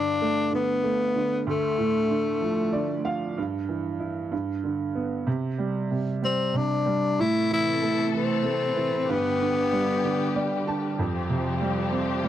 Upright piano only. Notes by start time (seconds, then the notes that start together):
Already playing: G2 D3
0.21 A3
0.52 D3
0.83 A3
1.16 D3
1.47 D2
1.78 A2
2.10 D3
2.41 F3
2.73 D3 D5
3.04 F3 F5
3.37 G2
3.69 E3
4.00 E4
4.32 G2
4.64 D3
4.95 B3
5.27 C3
5.58 G3
5.91 C3
6.22 G3
6.54 C3
6.86 G3
7.19 A2
7.50 E3
7.82 A3
8.13 E3
8.45 A3
8.77 E3
9.09 G2
9.41 D3
9.72 G3
10.04 D3
10.36 G3 D5
10.67 D3 A5
10.99 F2
11.29 C3
11.61 G3
11.92 C4
12.24 G3